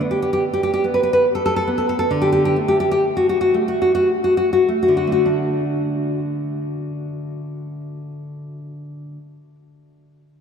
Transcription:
0.01 0.83 B3 soft
0.11 0.21 G4 soft
0.22 0.32 G4 soft
0.33 0.43 G4 medium
0.53 0.62 G4 soft
0.63 0.72 G4 soft
0.74 0.84 G4 medium
0.84 1.66 B3 soft
0.94 1.02 B4 soft
1.03 1.12 B4 medium
1.13 1.25 B4 medium
1.35 1.44 A4 soft
1.46 1.55 A4 medium
1.56 1.68 A4 medium
1.67 2.07 B3 soft
1.78 1.88 A4 soft
1.89 1.98 A4 medium
1.99 2.11 A4 medium
2.11 2.55 D3 soft
2.22 2.31 G4 medium
2.32 2.44 G4 medium
2.45 2.57 G4 medium
2.56 3.53 A3 soft
2.68 2.79 G4 soft
2.80 2.90 G4 medium
2.91 3.04 G4 medium
3.17 3.28 F#4 soft
3.29 3.40 F#4 soft
3.41 3.54 F#4 soft
3.54 4.67 A3 soft
3.68 3.80 F#4 soft
3.82 3.94 F#4 soft
3.95 4.09 F#4 soft
4.24 4.36 F#4 soft
4.37 4.52 F#4 soft
4.53 4.68 F#4 soft
4.69 5.06 A3 soft
4.83 4.96 F#4 soft
4.88 9.17 D3 soft
4.97 5.11 F#4 soft
5.07 9.37 A3 soft
5.12 5.27 F#4 soft
5.26 9.55 D4 soft

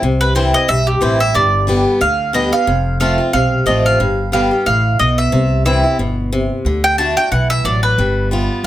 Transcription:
0.02 0.51 C2 medium
0.02 0.66 C3 medium
0.21 0.35 B4 medium
0.35 0.53 E3 medium
0.35 0.54 G3 medium
0.35 0.54 C4 medium
0.35 0.52 E4 medium
0.35 0.54 C5 medium
0.53 0.69 C4 soft
0.53 0.68 E4 soft
0.53 0.68 D#5 loud
0.68 0.97 B1 medium
0.68 1.32 G2 medium
0.68 0.87 E5 loud
0.87 1.01 G4 medium
1.01 1.30 A1 medium
1.01 1.19 E3 medium
1.01 1.19 G3 medium
1.01 1.20 C4 loud
1.01 1.18 E4 medium
1.01 1.20 C5 medium
1.19 1.35 C4 soft
1.19 1.34 E4 medium
1.19 1.35 E5 medium
1.34 1.84 G1 medium
1.34 1.98 G2 medium
1.34 1.83 D5 medium
1.67 1.99 D3 medium
1.67 2.00 G3 medium
1.67 2.00 B3 medium
1.67 2.00 G4 medium
2.01 2.50 D2 medium
2.01 2.32 D3 medium
2.01 2.32 F5 medium
2.33 2.52 D3 medium
2.33 2.52 G3 medium
2.33 2.52 B3 medium
2.33 2.51 G4 loud
2.33 2.52 D#5 medium
2.52 2.68 B3 soft
2.52 2.67 G4 medium
2.52 2.97 F5 medium
2.67 3.16 F1 medium
2.67 3.31 F2 medium
3.00 3.18 F3 medium
3.00 3.18 A3 medium
3.00 3.19 C4 medium
3.00 3.17 F4 medium
3.00 3.31 F5 medium
3.18 3.34 C4 soft
3.18 3.33 F4 medium
3.33 3.62 B1 medium
3.33 3.97 C3 medium
3.33 3.64 F5 medium
3.66 3.95 A1 medium
3.66 3.98 F3 medium
3.66 3.98 A3 medium
3.66 3.99 C4 medium
3.66 3.99 F4 medium
3.66 3.85 D#5 medium
3.86 4.30 F5 medium
4.00 4.49 G1 medium
4.00 4.63 G2 medium
4.32 4.50 D3 medium
4.32 4.51 G3 medium
4.32 4.51 B3 medium
4.32 4.50 G4 loud
4.32 4.64 F5 medium
4.51 4.67 B3 soft
4.51 4.65 G4 medium
4.66 4.94 A1 medium
4.66 4.98 A2 medium
4.66 4.97 F5 medium
4.99 5.28 B1 medium
4.99 5.31 B2 medium
4.99 5.18 D#5 medium
5.18 5.63 E5 medium
5.32 5.82 C2 loud
5.32 5.96 C3 medium
5.65 5.83 E3 medium
5.65 5.84 G3 medium
5.65 5.84 C4 medium
5.65 5.82 E4 loud
5.65 5.97 E5 medium
5.84 5.99 C4 soft
5.84 5.98 E4 medium
5.99 6.48 G1 medium
5.99 6.31 B2 medium
6.32 6.64 C3 medium
6.65 7.14 D2 medium
6.65 6.97 D3 medium
6.84 6.98 G5 loud
6.98 7.16 D3 medium
6.98 7.17 A3 medium
6.98 7.17 D4 medium
6.98 7.15 F#4 medium
6.98 7.16 A5 loud
7.17 7.32 D4 soft
7.17 7.31 F#4 medium
7.17 7.31 G5 loud
7.31 7.60 B1 medium
7.31 7.63 E3 medium
7.31 7.50 F#5 medium
7.50 7.64 E5 loud
7.64 7.93 A1 medium
7.64 7.97 F#3 medium
7.64 7.83 D5 medium
7.83 8.28 B4 medium
7.98 8.47 G1 loud
7.98 8.30 G3 medium
8.31 8.63 G3 medium
8.31 8.63 B3 medium
8.31 8.64 F4 medium
8.63 8.67 A1 medium

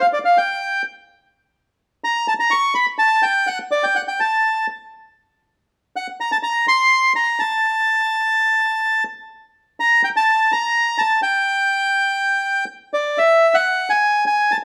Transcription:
0.01 0.06 F5 medium
0.13 0.19 D5 medium
0.25 0.38 F5 medium
0.38 0.82 G5 medium
2.04 2.27 A#5 medium
2.28 2.34 A5 medium
2.40 2.53 A#5 medium
2.51 2.74 C#6 medium
2.75 2.86 B5 medium
2.99 3.24 A5 medium
3.23 3.49 G5 medium
3.47 3.58 F#5 medium
3.71 3.85 D5 medium
3.84 3.97 G5 medium
3.96 4.02 F#5 medium
4.08 4.20 G5 medium
4.20 4.67 A5 medium
5.96 6.07 F#5 medium
6.21 6.31 A#5 medium
6.32 6.37 A5 medium
6.43 6.66 A#5 medium
6.68 7.13 C6 medium
7.16 7.41 A#5 medium
7.40 9.04 A5 medium
9.80 10.02 A#5 medium
10.04 10.09 G5 medium
10.16 10.53 A5 medium
10.52 11.00 A#5 medium
10.98 11.20 A5 medium
11.23 12.65 G5 medium
12.94 13.19 D5 medium
13.18 13.55 E5 medium
13.54 13.92 F#5 medium
13.90 14.24 G#5 medium
14.27 14.52 G#5 medium
14.52 14.57 A5 medium

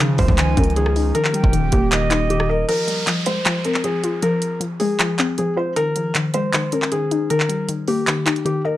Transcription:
0.00 0.17 C#3 loud
0.00 0.37 D#3 medium
0.00 0.77 F3 medium
0.00 1.13 F3 medium
0.00 1.13 C#4 medium
0.00 1.13 D#4 medium
0.18 0.28 C#2 loud
0.18 1.15 G#3 medium
0.18 0.55 C5 medium
0.18 kick medium
0.18 open hi-hat medium
0.28 0.56 C#2 loud
0.28 kick loud
0.38 0.76 D#3 medium
0.38 0.74 G#5 medium
0.38 clap loud
0.38 closed hi-hat medium
0.57 1.13 C#2 loud
0.57 1.15 C#4 medium
0.57 0.72 A#4 medium
0.57 kick loud
0.57 closed hi-hat medium
0.64 closed hi-hat medium
0.70 closed hi-hat soft
0.76 1.14 D#3 medium
0.76 1.13 G#4 medium
0.76 closed hi-hat medium
0.86 cross-stick loud
0.96 1.15 D#4 medium
0.96 open hi-hat medium
1.15 2.67 D#3 medium
1.15 1.52 D#3 loud
1.15 2.67 A#3 medium
1.15 2.67 G4 medium
1.15 1.51 A#4 loud
1.15 closed hi-hat medium
1.25 clap medium
1.34 2.30 G3 medium
1.34 1.88 G5 medium
1.34 closed hi-hat medium
1.44 1.71 D#1 loud
1.44 kick loud
1.53 1.91 D#3 medium
1.53 closed hi-hat medium
1.72 2.65 D#1 loud
1.72 2.69 A#3 medium
1.72 2.27 G4 medium
1.72 kick medium
1.72 closed hi-hat loud
1.92 2.29 D#3 medium
1.92 2.65 D#5 medium
1.92 clap loud
1.92 closed hi-hat medium
2.11 2.68 D#4 medium
2.11 clap loud
2.11 closed hi-hat medium
2.30 2.68 D#3 medium
2.30 2.45 G4 medium
2.30 closed hi-hat medium
2.40 cross-stick loud
2.49 2.64 A#4 medium
2.49 2.69 D#5 medium
2.68 3.06 F3 medium
2.68 3.05 A#4 loud
2.68 closed hi-hat medium
2.68 downlifter medium
2.88 3.84 G3 medium
2.88 closed hi-hat medium
3.07 3.45 F3 medium
3.07 clap loud
3.07 closed hi-hat medium
3.26 4.23 G#3 medium
3.26 3.63 C5 medium
3.26 closed hi-hat medium
3.45 3.83 F3 loud
3.45 clap loud
3.45 closed hi-hat medium
3.64 4.61 C4 medium
3.64 3.80 A#4 medium
3.64 closed hi-hat medium
3.74 clap medium
3.84 4.22 F3 medium
3.84 4.20 G#4 medium
3.84 closed hi-hat medium
4.04 5.00 F4 medium
4.04 closed hi-hat medium
4.22 4.59 F3 loud
4.22 4.59 A#4 loud
4.22 closed hi-hat medium
4.42 closed hi-hat medium
4.60 4.98 F3 medium
4.60 closed hi-hat medium
4.80 5.77 G#3 medium
4.80 5.34 G#4 medium
4.80 open hi-hat medium
4.99 5.38 F3 loud
4.99 clap loud
4.99 closed hi-hat medium
5.18 5.77 C4 medium
5.18 clap loud
5.18 closed hi-hat medium
5.38 5.77 F3 medium
5.38 5.53 G#4 medium
5.38 closed hi-hat medium
5.57 5.76 F4 medium
5.57 5.72 C5 medium
5.76 6.14 D#3 medium
5.76 6.13 A#4 loud
5.76 closed hi-hat medium
5.96 6.92 F3 medium
5.96 closed hi-hat medium
6.15 6.53 D#3 medium
6.15 clap medium
6.15 closed hi-hat medium
6.34 7.31 G#3 medium
6.34 6.70 C5 medium
6.34 closed hi-hat medium
6.53 6.91 D#3 medium
6.53 clap loud
6.53 closed hi-hat medium
6.72 7.30 C#4 medium
6.72 6.88 A#4 medium
6.72 closed hi-hat medium
6.82 clap medium
6.92 7.29 D#3 medium
6.92 7.28 G#4 medium
6.92 closed hi-hat medium
7.11 7.30 D#4 medium
7.11 closed hi-hat medium
7.30 7.67 D#3 medium
7.30 7.66 A#4 loud
7.30 closed hi-hat medium
7.40 clap medium
7.49 8.45 G3 medium
7.49 closed hi-hat medium
7.69 8.06 D#3 medium
7.69 closed hi-hat medium
7.88 8.77 A#3 medium
7.88 8.42 G4 medium
7.88 open hi-hat medium
8.07 8.44 D#3 medium
8.07 clap loud
8.07 closed hi-hat medium
8.26 8.77 D#4 medium
8.26 clap loud
8.26 closed hi-hat medium
8.36 closed hi-hat soft
8.45 8.77 D#3 medium
8.45 8.61 G4 medium
8.45 closed hi-hat medium
8.65 8.77 A#4 medium
8.65 8.77 D#5 medium

